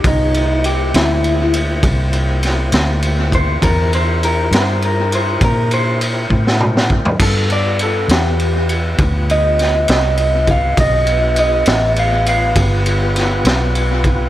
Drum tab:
CC |------------------------|------------------------|x-----------------------|------------------------|
RD |x-x-x-x-x-x-x-x-x-x-x-x-|x-x-x-x-x-x-x-x-x-------|x-x-x-x-x-x-x-x-x-x-x-x-|x-x-x-x-x-x-x-x-x-x-x-x-|
SD |------o---------o-o-----|------o------------o-o--|------o---------o-o-----|------o---------o-o-----|
T2 |------------------------|--------------------o---|------------------------|------------------------|
FT |------------------------|-----------------------o|------------------------|------------------------|
BD |o-----------o---------o-|o-----------o-----o---o-|o-----------o---------o-|o-----------o---------o-|